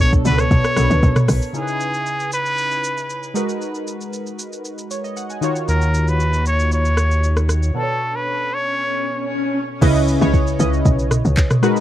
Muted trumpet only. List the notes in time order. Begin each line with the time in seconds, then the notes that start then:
0.01 C#5
0.27 B4
0.40 C#5
1.56 G#4
2.33 B4
5.70 A#4
6.09 B4
6.47 C#5
6.73 C#5
7.76 A4
8.16 B4
8.54 C#5